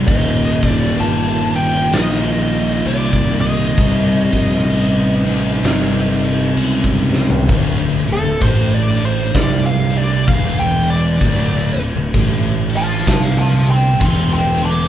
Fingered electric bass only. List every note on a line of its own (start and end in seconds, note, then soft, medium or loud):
0.07 0.97 D#1 loud
1.00 1.89 G1 loud
1.93 2.82 A#1 loud
2.86 3.75 C2 medium
3.78 4.30 C2 loud
4.33 4.67 A#1 medium
4.71 5.60 A1 medium
5.63 6.52 G1 loud
6.57 7.45 C#2 medium
7.49 8.01 D1 loud
8.05 8.22 D1 medium
8.24 8.41 D1 medium
8.42 9.31 A1 loud
9.35 10.24 C2 loud
10.28 11.17 E1 loud
11.21 11.73 D1 loud
11.77 11.94 D1 medium
11.96 12.13 D1 medium
12.14 13.04 A1 loud
13.08 13.97 C2 medium
14.01 14.88 E1 loud